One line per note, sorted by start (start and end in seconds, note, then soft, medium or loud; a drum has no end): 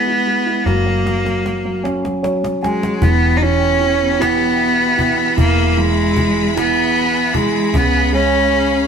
0.00 0.62 G#1 medium
0.00 0.27 G#3 medium
0.00 0.67 B3 medium
0.00 0.07 E4 soft
0.07 0.45 E4 soft
0.27 0.65 G#3 soft
0.46 0.65 E4 soft
0.66 2.98 F#1 medium
0.66 0.84 F#3 medium
0.66 1.84 A#3 medium
0.66 cajon slap soft
0.86 1.04 F#3 soft
1.05 1.23 F#3 soft
1.05 cajon slap medium
1.25 1.43 F#3 soft
1.25 cajon slap soft
1.45 1.63 F#3 soft
1.45 cajon slap medium
1.65 2.03 F#3 soft
1.84 2.98 C#4 medium
1.84 cajon slap medium
2.05 2.21 F#3 soft
2.05 cajon slap medium
2.23 2.42 F#3 soft
2.23 2.59 C#5 medium
2.23 cajon slap medium
2.44 2.61 F#3 soft
2.44 cajon slap medium
2.63 2.81 F#3 soft
2.63 3.04 G#3 medium
2.63 2.99 G#5 medium
2.63 cajon slap medium
2.83 3.01 F#3 soft
2.83 cajon slap medium
3.01 5.34 E1 medium
3.01 7.71 B2 medium
3.01 3.39 E3 medium
3.01 3.39 B3 medium
3.01 5.36 G4 medium
3.01 7.71 E5 medium
3.01 8.87 B5 medium
3.01 cajon bass medium
3.37 3.79 E3 soft
3.37 3.45 D#4 medium
3.41 4.22 C#4 medium
3.41 cajon slap soft
3.81 4.18 E3 soft
3.81 cajon slap soft
4.19 4.96 E3 soft
4.19 5.38 B3 medium
4.19 cajon slap medium
4.60 cajon slap soft
4.97 5.36 E3 soft
4.97 cajon bass medium
5.37 7.70 E1 medium
5.37 5.76 E3 medium
5.37 5.72 A#3 medium
5.37 8.87 G#4 medium
5.37 cajon bass loud
5.72 5.80 A#3 medium
5.77 6.15 E3 soft
5.77 6.56 G#3 medium
6.17 6.55 E3 soft
6.17 cajon bass medium
6.56 7.33 E3 soft
6.56 7.38 B3 medium
6.56 cajon slap medium
6.95 cajon slap soft
7.34 7.73 E3 soft
7.34 7.78 G#3 medium
7.34 cajon bass medium
7.74 8.87 C#2 medium
7.74 8.51 C#3 medium
7.74 8.14 B3 medium
7.74 8.87 C#4 medium
7.74 8.87 F5 medium
7.74 cajon bass loud
8.13 8.87 G#3 soft
8.13 8.87 C#4 loud
8.52 8.87 C#3 soft
8.52 cajon slap soft